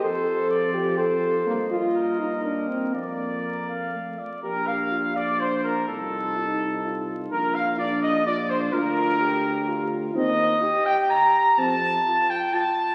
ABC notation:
X:1
M:3/4
L:1/8
Q:1/4=126
K:Bb
V:1 name="Cornet"
c4- c z | e6 | d2 B f2 d | B f2 d c B |
A4- A z | B f d e d c | B4- B z | e3 g b2 |
a3 g a2 |]
V:2 name="Trumpet"
c2 d2 c2- | c z B2 B2 | d4- d z | B f2 d c B |
A4- A z | B f d e d c | B4- B z | e3 g b2 |
a3 g a2 |]
V:3 name="French horn"
A3 G A2 | B, F2 E D C | B,4 z2 | G2 F4- |
F2 E2 F2- | F2 D2 F2 | F2 G2 F2 | E2 G4- |
G z F2 F2 |]
V:4 name="Euphonium"
F,6 | B,6- | B,4 A, z | D6 |
E6 | D4 D2 | D6 | C z4 z |
C z4 z |]
V:5 name="Tuba" clef=bass
F,,6 | G,,6 | F,,4- F,, z | B,,,6 |
C,,6 | B,,,6 | D,,6 | E,,2 z4 |
F,,2 z4 |]